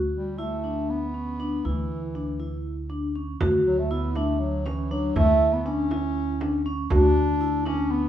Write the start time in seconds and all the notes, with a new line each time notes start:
Already playing: D2 F#4
0.13 G3
0.39 A3 E4
0.64 D4
0.90 B3
1.14 C#4
1.40 D4
1.65 D2 E3 E4
2.15 D4
2.40 E4
2.90 D4
3.16 C#4
3.41 D2 F#4, frame drum
3.67 F#3
3.79 A3
3.91 B3 E4
4.16 A3 D4, frame drum
4.40 F#3
4.66 E3 C#4, frame drum
4.91 F#3 D4
5.16 D2 A3 E4, frame drum
5.53 B3
5.66 C#4 D4
5.91 E4, frame drum
6.41 D4, frame drum
6.66 C#4
6.90 D2 D4 F#4, frame drum
7.41 E4
7.66 C#4 D4, frame drum
7.91 B3